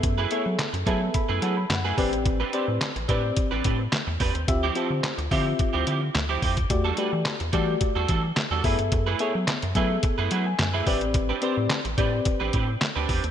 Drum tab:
HH |x-x-xxx-x-x-x-ox|x-x-xxx-x-x-x-ox|x-x-xxo-x-x-x-ox|x-x-xxx-x-x-x-ox|
CP |----x-------x---|----x-------x---|----x-------x---|----x-------x---|
SD |----o-------o---|----o-------o---|----o-------o---|----o-------o---|
BD |o-----o-o-----o-|o-----o-o-o---o-|o-----o-o-----oo|o-----o-o-o---o-|

HH |x-x-xxx-x-x-x-ox|x-x-xxx-x-x-x-ox|
CP |----x-------x---|----x-------x---|
SD |----o-------o---|----o-------o---|
BD |o-----o-o-----o-|o-----o-o-o---o-|